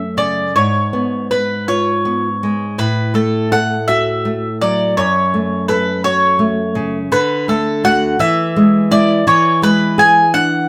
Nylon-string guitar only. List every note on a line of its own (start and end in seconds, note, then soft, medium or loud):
0.00 0.51 F#2 medium
0.00 0.40 A3 medium
0.17 0.55 C#3 medium
0.56 2.75 G#2 medium
0.93 1.53 B3 soft
1.31 1.91 B4 medium
1.68 2.28 F4 medium
2.05 2.64 B3 medium
2.43 2.79 G#3 medium
2.78 4.93 A2 medium
3.14 3.73 A3 soft
3.52 4.10 A4 medium
3.89 4.47 F#4 medium
4.25 4.83 A3 medium
4.62 4.98 F#3 medium
4.97 7.08 F#2 medium
5.34 5.90 A3 medium
5.69 6.26 A4 medium
6.04 6.61 F#4 medium
6.39 6.97 A3 medium
6.75 7.12 C#3 medium
7.12 8.17 D3 medium
7.48 7.82 A3 medium
7.84 8.16 A3 medium
7.84 8.17 F#4 medium
8.19 9.24 E3 medium
8.56 8.90 G#3 medium
8.91 9.23 G#3 medium
8.91 9.23 E4 medium
9.27 10.69 E3 medium
9.62 10.20 G#3 medium
9.98 10.56 G#4 medium
10.34 10.69 D4 medium